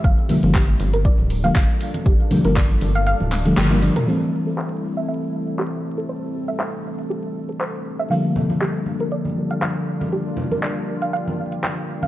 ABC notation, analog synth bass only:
X:1
M:4/4
L:1/16
Q:"Swing 16ths" 1/4=119
K:Aphr
V:1 name="Analog synth bass" clef=bass
G,,, z2 G,,,3 G,,,3 D,,,3 G,,, z3 | G,,, z2 G,,,3 G,,,3 D,,,3 G,,,3 z | z16 | z16 |
z16 | z16 |]